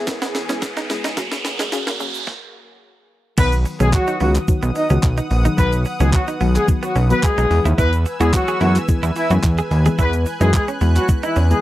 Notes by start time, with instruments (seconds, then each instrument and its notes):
Already playing: analog synth pad E3 B3 G#4, riser
0.07 synth pluck G#3 B3 E4 A#4, kick, snare, closed hi-hat, shaker
0.22 clean electric guitar B3, snare, closed hi-hat, shaker
0.35 muted clean electric guitar stroke, snare, open hi-hat, shaker
0.49 synth pluck G#3 B3 E4 G#4, clean electric guitar C#4, snare, closed hi-hat, shaker
0.62 kick, snare, closed hi-hat, shaker
0.77 clean electric guitar D#4, snare, closed hi-hat, shaker
0.90 synth pluck G#3 B3 E4 G#4, muted clean electric guitar stroke, snare, open hi-hat, shaker
1.04 clean electric guitar D#4, snare, closed hi-hat, shaker
1.17 analog synth pad F#3 A#3, clean electric guitar F#3, synth pluck A#3 C#4 F#4 G#4, kick, snare, closed hi-hat, shaker
1.32 snare, closed hi-hat, shaker
1.45 muted clean electric guitar stroke, snare, open hi-hat, shaker
1.59 clean electric guitar G#3, snare, closed hi-hat, shaker
1.72 synth pluck A#3 C#4 F#4 G#4, muted clean electric guitar stroke, snare, closed hi-hat, shaker
1.87 clean electric guitar A#3, snare, closed hi-hat, shaker
2.00 clean electric guitar F#3, synth pluck A#3 C#4 F#4 G#4, open hi-hat, shaker
2.14 closed hi-hat, shaker
2.27 kick, snare
3.37 analog synth bass B1, synth pluck D#3 F#3 B3 D#4 F#4, clean electric guitar B3, horn section B3 B4, analog synth pad B4 F#5 D#6, kick, crash, shaker
3.52 closed hi-hat, shaker
3.65 muted clean electric guitar stroke, open hi-hat, shaker
3.80 analog synth bass B1, synth pluck D#3 F#3 B3 D#4 G#4, horn section G#3 G#4, clean electric guitar C#4, closed hi-hat, shaker
3.93 horn section F#3 F#4, muted clean electric guitar stroke, kick, clap, shaker
4.07 clean electric guitar D#4, closed hi-hat, shaker
4.20 analog synth bass C#2, synth pluck D#3 F#3 B3 D#4 F#4, horn section F#3 F#4, clean electric guitar B3, open hi-hat, shaker
4.35 clap, closed hi-hat, shaker
4.48 synth pluck D#3 F#3 B3 D#4 F#4, kick, shaker
4.63 analog synth bass B1, clean electric guitar B3, closed hi-hat, shaker
4.75 horn section D#4 D#5, muted clean electric guitar stroke, open hi-hat, shaker
4.90 analog synth bass C#2, synth pluck D#3 F#3 B3 D#4 F#4, clean electric guitar C#4, closed hi-hat, shaker
5.03 analog synth bass B1, kick, clap, shaker
5.17 clean electric guitar D#4, closed hi-hat, shaker
5.31 analog synth bass A#1, muted clean electric guitar stroke, open hi-hat, shaker
5.45 synth pluck D#3 F#3 B3 D#4 G#4, clean electric guitar D#4, closed hi-hat, shaker
5.58 analog synth bass B1, synth pluck D#3 F#3 B3 D#4 F#4, clean electric guitar B3, horn section B3 B4, kick, shaker
5.72 closed hi-hat, shaker
5.85 muted clean electric guitar stroke, open hi-hat, shaker
6.00 analog synth bass C#2, synth pluck D#3 F#3 B3 D#4 F#4, horn section G#3 G#4, clean electric guitar C#4, closed hi-hat, shaker
6.13 horn section F#3 F#4, muted clean electric guitar stroke, kick, clap, shaker
6.27 clean electric guitar D#4, closed hi-hat, shaker
6.41 analog synth bass B1, synth pluck D#3 F#3 B3 D#4 G#4, clean electric guitar B3, open hi-hat, shaker
6.55 horn section G#3 G#4, clap, closed hi-hat, shaker
6.68 synth pluck D#3 F#3 B3 D#4 F#4, muted clean electric guitar stroke, kick, shaker
6.83 horn section F#3 F#4, clean electric guitar B3, closed hi-hat, shaker
6.96 analog synth bass B1, clean electric guitar C#4, open hi-hat, shaker
7.10 synth pluck D#3 F#3 B3 D#4 F#4, horn section B3 B4, closed hi-hat, shaker
7.23 horn section G#3 G#4, kick, clap, shaker
7.38 analog synth bass B1, clean electric guitar D#4, closed hi-hat, shaker
7.51 analog synth bass E2, synth pluck E3 G#3 B3 E4 G#4, analog synth pad G#5 E6, muted clean electric guitar stroke, open hi-hat, shaker
7.65 analog synth bass D#2, clean electric guitar E4, closed hi-hat, shaker
7.78 analog synth bass E2, horn section B3 B4, clean electric guitar E4, kick, shaker
7.93 closed hi-hat, shaker
8.06 muted clean electric guitar stroke, open hi-hat, shaker
8.20 analog synth bass E2, synth pluck E3 G#3 B3 E4 G#4, horn section G#3 G#4, clean electric guitar F#4, closed hi-hat, shaker
8.33 horn section F#3 F#4, muted clean electric guitar stroke, kick, clap, shaker
8.48 clean electric guitar G#4, closed hi-hat, shaker
8.61 analog synth bass F#2, synth pluck E3 G#3 B3 E4 G#4, horn section F#3 F#4, clean electric guitar E4, open hi-hat, shaker
8.76 clap, closed hi-hat, shaker
8.88 synth pluck E3 G#3 B3 E4 G#4, kick, shaker
9.03 analog synth bass E2, clean electric guitar E4, closed hi-hat, shaker
9.16 horn section E3 E4, muted clean electric guitar stroke, open hi-hat, shaker
9.30 analog synth bass F#2, synth pluck E3 G#3 B3 E4 G#4, clean electric guitar F#4, closed hi-hat, shaker
9.43 analog synth bass E2, kick, clap, shaker
9.58 clean electric guitar G#4, closed hi-hat, shaker
9.71 analog synth bass D#2, analog synth pad F#6, muted clean electric guitar stroke, open hi-hat, shaker
9.86 synth pluck E3 G#3 B3 E4 B4, clean electric guitar G#4, closed hi-hat, shaker
9.98 analog synth bass E2, synth pluck E3 G#3 B3 E4 G#4, horn section B3 B4, clean electric guitar E4, kick, shaker
10.13 closed hi-hat, shaker
10.26 muted clean electric guitar stroke, open hi-hat, shaker
10.41 analog synth bass F#2, synth pluck E3 G#3 B3 E4 B4, horn section G#3 G#4, clean electric guitar D#4, closed hi-hat, shaker
10.53 horn section G#3 G#4, muted clean electric guitar stroke, kick, clap, shaker
10.68 clean electric guitar C#4, closed hi-hat, shaker
10.81 analog synth bass E2, synth pluck E3 G#3 B3 E4 F#4, clean electric guitar B3, open hi-hat, shaker
10.96 horn section F#3 F#4, clap, closed hi-hat, shaker
11.08 synth pluck E3 G#3 B3 E4 G#4, muted clean electric guitar stroke, kick, shaker
11.23 horn section E3 E4, clean electric guitar D#4, closed hi-hat, shaker
11.36 analog synth bass E2, clean electric guitar C#4, open hi-hat, shaker
11.50 synth pluck E3 G#3 B3 E4 A#5, horn section G#3 G#4, closed hi-hat, shaker